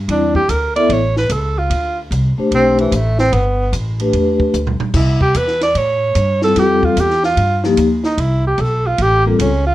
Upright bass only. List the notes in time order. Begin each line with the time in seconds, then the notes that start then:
0.08 E2
0.49 D2
0.89 A1
1.30 C#2
1.70 D2
2.11 C2
2.38 muted upright bass stroke
2.51 B1
2.91 A1
3.32 G1
3.73 A1
4.13 E2
4.54 D2
4.81 muted upright bass stroke
4.94 C2
5.34 E2
5.75 A2
6.15 G2
6.56 F2
6.96 E2
7.37 G2
7.77 D#2
8.18 C2
8.58 B1
8.98 A1
9.39 C#2